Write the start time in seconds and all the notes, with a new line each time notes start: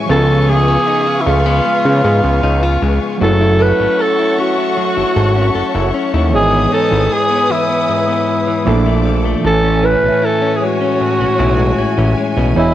Already playing: G#3 C#4 B4 G#5 C#6
0.06 C#2 C#3 F3 B3 B4 F5
0.10 C#4 F4 A4 G#5
0.48 A3 G#4
0.68 B3
0.88 D#4
1.07 F4
1.21 E4
1.26 C#2 A3 F4 G#4
1.46 B3
1.66 G#3
1.85 C#3
2.04 G#2 B3
2.24 C#2
2.43 C#2 D#4
2.63 F4
2.82 C#2 G#3
3.18 F#1 F#3 A3 C#4 A4 C#5 F#5 C#6
3.23 E4 A4
3.41 E4
3.60 A4 B4
3.80 G#1 C#4
3.99 A4
4.19 E4
4.38 C#4 F#4
4.58 E4
4.77 F#3
4.97 G#1 E4
5.16 G#1 A4
5.36 C#4
5.55 F#1 A4
5.75 F#1 E4
5.94 C#4
6.14 D#2 E4
6.29 G#1 G#2 E3 B3 B4 G#5 D#6
6.35 G#4 D#5 G#5
6.53 B3
6.72 D#4 A4
6.91 G#1 E3
7.12 G#4
7.30 B3
7.50 E3 E4
7.69 B3
7.89 G#2
8.08 B3
8.47 E3
8.65 A#1 A#2 F3 A3 A#3 D4 A4 D5 D6
8.86 A3
9.06 F3
9.25 A3
9.41 A1 A2 E3 A3 C#5 G#5
9.46 C#4 A4 G#5
9.64 C#4
9.83 E4 B4
10.03 B1
10.08 E5
10.22 E4 A4
10.42 C#4
10.56 G#4
10.61 G#3 F#4
10.81 C#4
11.00 A2
11.20 B1 C#4
11.39 B1 E4
11.59 G#3
11.78 A1 E4
11.98 A1 C#4
12.17 G#3
12.37 B1 C#4
12.53 E1 E3 B3 C#5 D#5 B5
12.58 E4 D#5 G#5